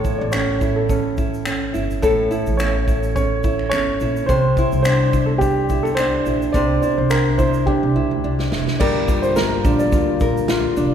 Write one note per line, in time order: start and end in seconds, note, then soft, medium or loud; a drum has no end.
0.00 2.01 A2 medium
0.00 2.02 A4 medium
0.00 0.21 C#5 medium
0.04 0.61 E4 medium
0.04 kick medium
0.04 shaker medium
0.18 1.71 A1 loud
0.18 0.33 D5 medium
0.32 0.89 C#4 medium
0.32 0.78 C#5 medium
0.32 finger snap loud
0.32 shaker medium
0.61 1.18 E4 medium
0.61 kick medium
0.61 shaker soft
0.76 0.88 A4 medium
0.89 1.45 C#4 soft
0.89 1.42 A4 medium
0.89 kick medium
0.89 shaker medium
1.17 1.74 E4 medium
1.17 kick medium
1.17 shaker soft
1.34 shaker soft
1.46 2.59 C#4 medium
1.46 finger snap loud
1.46 shaker medium
1.74 1.98 G1 medium
1.74 2.30 E4 medium
1.74 shaker soft
1.91 shaker soft
2.02 2.26 A1 medium
2.02 4.28 A2 medium
2.02 2.61 A4 medium
2.02 4.29 A4 medium
2.02 kick medium
2.02 shaker medium
2.31 2.88 E4 medium
2.31 shaker medium
2.46 3.69 A1 loud
2.46 shaker soft
2.57 3.15 C#4 medium
2.57 3.14 C#5 medium
2.57 finger snap loud
2.57 shaker medium
2.88 3.44 E4 medium
2.88 kick medium
2.88 shaker soft
3.03 shaker soft
3.16 3.72 C#4 medium
3.16 3.68 C#5 medium
3.16 kick medium
3.16 shaker medium
3.43 4.01 E4 medium
3.43 kick medium
3.43 shaker soft
3.59 finger snap soft
3.69 3.96 G1 medium
3.69 4.35 C#4 medium
3.69 4.29 C#5 medium
3.69 finger snap loud
3.69 shaker medium
4.00 4.24 A#1 medium
4.00 4.58 E4 medium
4.00 shaker soft
4.16 shaker soft
4.26 4.52 C2 medium
4.26 6.53 C3 medium
4.26 4.81 C5 medium
4.26 6.54 C5 medium
4.26 kick medium
4.26 shaker medium
4.57 5.12 E4 medium
4.57 kick medium
4.57 shaker medium
4.72 6.23 C2 medium
4.72 shaker soft
4.83 5.41 D4 medium
4.83 5.25 C5 medium
4.83 finger snap loud
4.83 shaker medium
5.13 5.70 E4 medium
5.13 kick medium
5.13 shaker medium
5.26 5.31 A4 medium
5.38 5.98 D4 medium
5.38 5.85 G4 medium
5.38 kick medium
5.38 shaker medium
5.69 6.25 E4 soft
5.69 kick medium
5.69 shaker soft
5.83 5.97 A4 medium
5.83 finger snap soft
5.83 shaker soft
5.95 7.10 D4 medium
5.95 6.55 C5 medium
5.95 finger snap loud
5.95 shaker medium
6.26 6.49 A#1 medium
6.26 6.82 E4 medium
6.26 shaker soft
6.42 shaker soft
6.53 6.78 C2 medium
6.53 8.80 C3 medium
6.53 8.80 C5 medium
6.53 6.80 D5 medium
6.53 kick medium
6.53 shaker medium
6.82 7.38 E4 medium
6.82 6.98 D5 medium
6.82 shaker medium
6.97 7.64 C2 medium
6.97 7.11 C5 medium
7.10 7.67 D4 medium
7.10 7.37 A#4 medium
7.10 finger snap loud
7.10 shaker medium
7.38 7.95 E4 medium
7.38 7.68 C5 medium
7.38 kick medium
7.38 shaker soft
7.54 shaker soft
7.66 8.24 D4 medium
7.66 8.47 G4 medium
7.66 kick medium
7.83 7.94 C3 medium
7.96 8.08 C2 medium
7.96 8.51 E4 medium
8.11 8.22 D2 medium
8.24 8.47 C2 medium
8.24 9.64 D4 medium
8.39 snare medium
8.52 8.65 F1 medium
8.52 8.86 E4 medium
8.52 snare medium
8.67 snare medium
8.80 9.61 G1 medium
8.80 10.94 D3 medium
8.80 10.94 G3 medium
8.80 10.94 A#3 medium
8.80 10.94 F4 medium
8.80 9.35 A#4 medium
8.80 9.20 D5 medium
8.80 kick medium
8.80 crash medium
9.08 9.92 F4 medium
9.08 kick medium
9.08 shaker medium
9.22 9.35 C5 medium
9.22 shaker soft
9.36 9.81 A#4 medium
9.36 10.20 A#4 medium
9.36 snare loud
9.36 shaker medium
9.65 9.88 A#1 loud
9.65 10.77 D4 medium
9.65 kick loud
9.65 shaker medium
9.79 10.73 D5 medium
9.79 shaker medium
9.92 10.16 D2 medium
9.92 10.48 F4 medium
9.92 kick medium
9.92 shaker medium
10.20 10.67 A#1 medium
10.20 10.94 A#4 medium
10.20 kick medium
10.20 shaker medium
10.37 shaker soft
10.48 10.94 F4 medium
10.48 snare loud
10.48 shaker medium
10.77 10.94 F1 medium
10.77 10.94 D4 medium
10.77 shaker medium